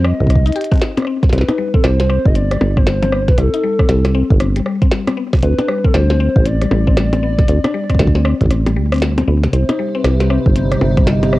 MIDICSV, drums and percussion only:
0, 0, Header, 1, 3, 480
1, 0, Start_track
1, 0, Key_signature, -3, "minor"
1, 0, Tempo, 512821
1, 1241, Time_signature, 4, 2, 24, 8
1, 10662, End_track
2, 0, Start_track
2, 0, Title_t, "Percussion blips"
2, 912, Note_on_c, 9, 64, 88
2, 1006, Note_off_c, 9, 64, 0
2, 1391, Note_on_c, 9, 64, 94
2, 1485, Note_off_c, 9, 64, 0
2, 2442, Note_on_c, 9, 64, 96
2, 2536, Note_off_c, 9, 64, 0
2, 2831, Note_on_c, 9, 64, 91
2, 2924, Note_off_c, 9, 64, 0
2, 4751, Note_on_c, 9, 64, 94
2, 4845, Note_off_c, 9, 64, 0
2, 5229, Note_on_c, 9, 64, 99
2, 5323, Note_off_c, 9, 64, 0
2, 6282, Note_on_c, 9, 64, 98
2, 6376, Note_off_c, 9, 64, 0
2, 6671, Note_on_c, 9, 64, 96
2, 6764, Note_off_c, 9, 64, 0
2, 7152, Note_on_c, 9, 64, 96
2, 7246, Note_off_c, 9, 64, 0
2, 8111, Note_on_c, 9, 64, 88
2, 8205, Note_off_c, 9, 64, 0
2, 8591, Note_on_c, 9, 64, 97
2, 8684, Note_off_c, 9, 64, 0
2, 9070, Note_on_c, 9, 64, 91
2, 9164, Note_off_c, 9, 64, 0
2, 10122, Note_on_c, 9, 64, 96
2, 10216, Note_off_c, 9, 64, 0
2, 10511, Note_on_c, 9, 64, 92
2, 10604, Note_off_c, 9, 64, 0
2, 10662, End_track
3, 0, Start_track
3, 0, Title_t, "Drums"
3, 42, Note_on_c, 9, 37, 78
3, 135, Note_off_c, 9, 37, 0
3, 190, Note_on_c, 9, 36, 49
3, 251, Note_off_c, 9, 36, 0
3, 251, Note_on_c, 9, 36, 69
3, 281, Note_on_c, 9, 37, 50
3, 281, Note_on_c, 9, 42, 78
3, 331, Note_off_c, 9, 36, 0
3, 331, Note_on_c, 9, 36, 83
3, 375, Note_off_c, 9, 37, 0
3, 375, Note_off_c, 9, 42, 0
3, 425, Note_off_c, 9, 36, 0
3, 429, Note_on_c, 9, 42, 24
3, 441, Note_off_c, 9, 42, 0
3, 441, Note_on_c, 9, 42, 29
3, 490, Note_off_c, 9, 42, 0
3, 490, Note_on_c, 9, 42, 33
3, 521, Note_off_c, 9, 42, 0
3, 521, Note_on_c, 9, 42, 37
3, 571, Note_off_c, 9, 42, 0
3, 571, Note_on_c, 9, 42, 42
3, 602, Note_off_c, 9, 42, 0
3, 602, Note_on_c, 9, 42, 46
3, 670, Note_on_c, 9, 36, 122
3, 671, Note_off_c, 9, 42, 0
3, 671, Note_on_c, 9, 37, 75
3, 671, Note_on_c, 9, 42, 35
3, 689, Note_off_c, 9, 42, 0
3, 689, Note_on_c, 9, 42, 29
3, 707, Note_off_c, 9, 42, 0
3, 707, Note_on_c, 9, 42, 23
3, 726, Note_off_c, 9, 42, 0
3, 726, Note_on_c, 9, 42, 19
3, 745, Note_off_c, 9, 42, 0
3, 745, Note_on_c, 9, 42, 16
3, 763, Note_off_c, 9, 42, 0
3, 763, Note_on_c, 9, 38, 120
3, 763, Note_on_c, 9, 42, 80
3, 764, Note_off_c, 9, 36, 0
3, 765, Note_off_c, 9, 37, 0
3, 857, Note_off_c, 9, 38, 0
3, 857, Note_off_c, 9, 42, 0
3, 912, Note_on_c, 9, 37, 23
3, 912, Note_on_c, 9, 42, 53
3, 935, Note_off_c, 9, 37, 0
3, 935, Note_on_c, 9, 37, 28
3, 957, Note_off_c, 9, 37, 0
3, 957, Note_on_c, 9, 37, 36
3, 980, Note_off_c, 9, 37, 0
3, 980, Note_on_c, 9, 37, 41
3, 1006, Note_off_c, 9, 42, 0
3, 1074, Note_off_c, 9, 37, 0
3, 1150, Note_on_c, 9, 36, 125
3, 1151, Note_on_c, 9, 38, 28
3, 1151, Note_on_c, 9, 42, 38
3, 1162, Note_off_c, 9, 38, 0
3, 1162, Note_on_c, 9, 38, 35
3, 1211, Note_off_c, 9, 38, 0
3, 1211, Note_on_c, 9, 38, 41
3, 1243, Note_off_c, 9, 38, 0
3, 1243, Note_off_c, 9, 42, 0
3, 1243, Note_on_c, 9, 38, 46
3, 1243, Note_on_c, 9, 42, 78
3, 1244, Note_off_c, 9, 36, 0
3, 1291, Note_off_c, 9, 38, 0
3, 1291, Note_on_c, 9, 38, 50
3, 1322, Note_off_c, 9, 38, 0
3, 1322, Note_on_c, 9, 38, 54
3, 1336, Note_off_c, 9, 42, 0
3, 1391, Note_on_c, 9, 37, 52
3, 1391, Note_on_c, 9, 42, 51
3, 1415, Note_off_c, 9, 38, 0
3, 1485, Note_off_c, 9, 37, 0
3, 1485, Note_off_c, 9, 42, 0
3, 1630, Note_on_c, 9, 36, 117
3, 1722, Note_on_c, 9, 37, 76
3, 1722, Note_on_c, 9, 38, 118
3, 1722, Note_on_c, 9, 42, 76
3, 1724, Note_off_c, 9, 36, 0
3, 1816, Note_off_c, 9, 37, 0
3, 1816, Note_off_c, 9, 38, 0
3, 1816, Note_off_c, 9, 42, 0
3, 1871, Note_on_c, 9, 38, 62
3, 1871, Note_on_c, 9, 42, 50
3, 1961, Note_on_c, 9, 37, 51
3, 1964, Note_off_c, 9, 38, 0
3, 1964, Note_off_c, 9, 42, 0
3, 2055, Note_off_c, 9, 37, 0
3, 2110, Note_on_c, 9, 36, 105
3, 2201, Note_on_c, 9, 42, 76
3, 2204, Note_off_c, 9, 36, 0
3, 2295, Note_off_c, 9, 42, 0
3, 2351, Note_on_c, 9, 37, 77
3, 2351, Note_on_c, 9, 42, 52
3, 2445, Note_off_c, 9, 37, 0
3, 2445, Note_off_c, 9, 42, 0
3, 2591, Note_on_c, 9, 36, 117
3, 2591, Note_on_c, 9, 37, 50
3, 2682, Note_on_c, 9, 38, 120
3, 2682, Note_on_c, 9, 42, 75
3, 2684, Note_off_c, 9, 36, 0
3, 2684, Note_off_c, 9, 37, 0
3, 2776, Note_off_c, 9, 38, 0
3, 2776, Note_off_c, 9, 42, 0
3, 2831, Note_on_c, 9, 42, 50
3, 2923, Note_on_c, 9, 37, 77
3, 2924, Note_off_c, 9, 42, 0
3, 3016, Note_off_c, 9, 37, 0
3, 3071, Note_on_c, 9, 36, 124
3, 3071, Note_on_c, 9, 38, 64
3, 3071, Note_on_c, 9, 42, 37
3, 3162, Note_off_c, 9, 42, 0
3, 3162, Note_on_c, 9, 37, 54
3, 3162, Note_on_c, 9, 42, 76
3, 3164, Note_off_c, 9, 36, 0
3, 3165, Note_off_c, 9, 38, 0
3, 3255, Note_off_c, 9, 37, 0
3, 3255, Note_off_c, 9, 42, 0
3, 3311, Note_on_c, 9, 42, 52
3, 3405, Note_off_c, 9, 42, 0
3, 3551, Note_on_c, 9, 36, 102
3, 3551, Note_on_c, 9, 37, 75
3, 3641, Note_on_c, 9, 38, 113
3, 3641, Note_on_c, 9, 42, 72
3, 3644, Note_off_c, 9, 36, 0
3, 3645, Note_off_c, 9, 37, 0
3, 3735, Note_off_c, 9, 38, 0
3, 3735, Note_off_c, 9, 42, 0
3, 3791, Note_on_c, 9, 37, 51
3, 3791, Note_on_c, 9, 38, 59
3, 3791, Note_on_c, 9, 42, 52
3, 3884, Note_off_c, 9, 37, 0
3, 3884, Note_off_c, 9, 38, 0
3, 3884, Note_off_c, 9, 42, 0
3, 4031, Note_on_c, 9, 36, 116
3, 4122, Note_on_c, 9, 37, 76
3, 4122, Note_on_c, 9, 42, 76
3, 4125, Note_off_c, 9, 36, 0
3, 4215, Note_off_c, 9, 37, 0
3, 4215, Note_off_c, 9, 42, 0
3, 4270, Note_on_c, 9, 42, 52
3, 4363, Note_on_c, 9, 37, 54
3, 4364, Note_off_c, 9, 42, 0
3, 4456, Note_off_c, 9, 37, 0
3, 4511, Note_on_c, 9, 36, 116
3, 4511, Note_on_c, 9, 42, 34
3, 4601, Note_off_c, 9, 42, 0
3, 4601, Note_on_c, 9, 38, 116
3, 4601, Note_on_c, 9, 42, 76
3, 4605, Note_off_c, 9, 36, 0
3, 4695, Note_off_c, 9, 38, 0
3, 4695, Note_off_c, 9, 42, 0
3, 4751, Note_on_c, 9, 37, 77
3, 4751, Note_on_c, 9, 42, 49
3, 4845, Note_off_c, 9, 37, 0
3, 4845, Note_off_c, 9, 42, 0
3, 4991, Note_on_c, 9, 36, 105
3, 4991, Note_on_c, 9, 37, 51
3, 4991, Note_on_c, 9, 38, 61
3, 4991, Note_on_c, 9, 42, 34
3, 5008, Note_off_c, 9, 42, 0
3, 5008, Note_on_c, 9, 42, 28
3, 5026, Note_off_c, 9, 42, 0
3, 5026, Note_on_c, 9, 42, 23
3, 5044, Note_off_c, 9, 42, 0
3, 5044, Note_on_c, 9, 42, 19
3, 5063, Note_off_c, 9, 42, 0
3, 5063, Note_on_c, 9, 42, 15
3, 5080, Note_off_c, 9, 42, 0
3, 5080, Note_on_c, 9, 42, 77
3, 5084, Note_off_c, 9, 37, 0
3, 5084, Note_off_c, 9, 38, 0
3, 5085, Note_off_c, 9, 36, 0
3, 5173, Note_off_c, 9, 42, 0
3, 5229, Note_on_c, 9, 42, 53
3, 5321, Note_on_c, 9, 37, 83
3, 5323, Note_off_c, 9, 42, 0
3, 5415, Note_off_c, 9, 37, 0
3, 5471, Note_on_c, 9, 36, 109
3, 5562, Note_on_c, 9, 37, 54
3, 5562, Note_on_c, 9, 38, 112
3, 5562, Note_on_c, 9, 42, 78
3, 5565, Note_off_c, 9, 36, 0
3, 5655, Note_off_c, 9, 37, 0
3, 5655, Note_off_c, 9, 38, 0
3, 5655, Note_off_c, 9, 42, 0
3, 5710, Note_on_c, 9, 38, 60
3, 5804, Note_off_c, 9, 38, 0
3, 5951, Note_on_c, 9, 36, 114
3, 6042, Note_on_c, 9, 42, 77
3, 6045, Note_off_c, 9, 36, 0
3, 6135, Note_off_c, 9, 42, 0
3, 6191, Note_on_c, 9, 37, 55
3, 6191, Note_on_c, 9, 42, 53
3, 6285, Note_off_c, 9, 37, 0
3, 6285, Note_off_c, 9, 42, 0
3, 6431, Note_on_c, 9, 36, 98
3, 6523, Note_on_c, 9, 37, 83
3, 6523, Note_on_c, 9, 38, 114
3, 6523, Note_on_c, 9, 42, 79
3, 6525, Note_off_c, 9, 36, 0
3, 6616, Note_off_c, 9, 37, 0
3, 6616, Note_off_c, 9, 38, 0
3, 6616, Note_off_c, 9, 42, 0
3, 6671, Note_on_c, 9, 42, 51
3, 6764, Note_off_c, 9, 42, 0
3, 6911, Note_on_c, 9, 36, 116
3, 6912, Note_on_c, 9, 38, 59
3, 6912, Note_on_c, 9, 42, 37
3, 7002, Note_off_c, 9, 42, 0
3, 7002, Note_on_c, 9, 42, 82
3, 7005, Note_off_c, 9, 36, 0
3, 7005, Note_off_c, 9, 38, 0
3, 7096, Note_off_c, 9, 42, 0
3, 7152, Note_on_c, 9, 37, 86
3, 7152, Note_on_c, 9, 42, 55
3, 7246, Note_off_c, 9, 37, 0
3, 7246, Note_off_c, 9, 42, 0
3, 7390, Note_on_c, 9, 37, 54
3, 7390, Note_on_c, 9, 42, 37
3, 7391, Note_on_c, 9, 36, 51
3, 7436, Note_off_c, 9, 36, 0
3, 7436, Note_on_c, 9, 36, 65
3, 7481, Note_off_c, 9, 42, 0
3, 7481, Note_on_c, 9, 38, 118
3, 7481, Note_on_c, 9, 42, 78
3, 7482, Note_off_c, 9, 36, 0
3, 7482, Note_on_c, 9, 36, 85
3, 7484, Note_off_c, 9, 37, 0
3, 7556, Note_off_c, 9, 36, 0
3, 7556, Note_on_c, 9, 36, 98
3, 7575, Note_off_c, 9, 38, 0
3, 7575, Note_off_c, 9, 42, 0
3, 7630, Note_on_c, 9, 38, 58
3, 7650, Note_off_c, 9, 36, 0
3, 7722, Note_on_c, 9, 37, 83
3, 7724, Note_off_c, 9, 38, 0
3, 7815, Note_off_c, 9, 37, 0
3, 7871, Note_on_c, 9, 36, 46
3, 7871, Note_on_c, 9, 42, 38
3, 7917, Note_off_c, 9, 36, 0
3, 7917, Note_on_c, 9, 36, 61
3, 7963, Note_off_c, 9, 42, 0
3, 7963, Note_on_c, 9, 37, 57
3, 7963, Note_on_c, 9, 42, 82
3, 8010, Note_off_c, 9, 36, 0
3, 8056, Note_off_c, 9, 37, 0
3, 8056, Note_off_c, 9, 42, 0
3, 8111, Note_on_c, 9, 42, 54
3, 8205, Note_off_c, 9, 42, 0
3, 8352, Note_on_c, 9, 37, 81
3, 8352, Note_on_c, 9, 42, 36
3, 8370, Note_off_c, 9, 42, 0
3, 8370, Note_on_c, 9, 42, 29
3, 8388, Note_off_c, 9, 42, 0
3, 8388, Note_on_c, 9, 42, 24
3, 8407, Note_off_c, 9, 42, 0
3, 8407, Note_on_c, 9, 42, 20
3, 8425, Note_off_c, 9, 42, 0
3, 8425, Note_on_c, 9, 42, 16
3, 8443, Note_off_c, 9, 42, 0
3, 8443, Note_on_c, 9, 38, 112
3, 8443, Note_on_c, 9, 42, 81
3, 8445, Note_off_c, 9, 37, 0
3, 8536, Note_off_c, 9, 38, 0
3, 8536, Note_off_c, 9, 42, 0
3, 8591, Note_on_c, 9, 42, 53
3, 8684, Note_off_c, 9, 42, 0
3, 8831, Note_on_c, 9, 38, 59
3, 8831, Note_on_c, 9, 42, 39
3, 8922, Note_off_c, 9, 42, 0
3, 8922, Note_on_c, 9, 42, 85
3, 8925, Note_off_c, 9, 38, 0
3, 9015, Note_off_c, 9, 42, 0
3, 9070, Note_on_c, 9, 37, 57
3, 9070, Note_on_c, 9, 42, 58
3, 9164, Note_off_c, 9, 37, 0
3, 9164, Note_off_c, 9, 42, 0
3, 9402, Note_on_c, 9, 37, 82
3, 9402, Note_on_c, 9, 38, 119
3, 9402, Note_on_c, 9, 42, 85
3, 9496, Note_off_c, 9, 37, 0
3, 9496, Note_off_c, 9, 38, 0
3, 9496, Note_off_c, 9, 42, 0
3, 9551, Note_on_c, 9, 38, 63
3, 9551, Note_on_c, 9, 42, 55
3, 9643, Note_on_c, 9, 37, 55
3, 9645, Note_off_c, 9, 38, 0
3, 9645, Note_off_c, 9, 42, 0
3, 9737, Note_off_c, 9, 37, 0
3, 9791, Note_on_c, 9, 36, 109
3, 9883, Note_on_c, 9, 42, 82
3, 9885, Note_off_c, 9, 36, 0
3, 9976, Note_off_c, 9, 42, 0
3, 10032, Note_on_c, 9, 37, 85
3, 10032, Note_on_c, 9, 42, 58
3, 10125, Note_off_c, 9, 37, 0
3, 10125, Note_off_c, 9, 42, 0
3, 10271, Note_on_c, 9, 36, 121
3, 10271, Note_on_c, 9, 37, 55
3, 10271, Note_on_c, 9, 42, 38
3, 10362, Note_off_c, 9, 42, 0
3, 10362, Note_on_c, 9, 38, 118
3, 10362, Note_on_c, 9, 42, 86
3, 10365, Note_off_c, 9, 36, 0
3, 10365, Note_off_c, 9, 37, 0
3, 10455, Note_off_c, 9, 38, 0
3, 10455, Note_off_c, 9, 42, 0
3, 10511, Note_on_c, 9, 42, 55
3, 10602, Note_on_c, 9, 37, 86
3, 10604, Note_off_c, 9, 42, 0
3, 10662, Note_off_c, 9, 37, 0
3, 10662, End_track
0, 0, End_of_file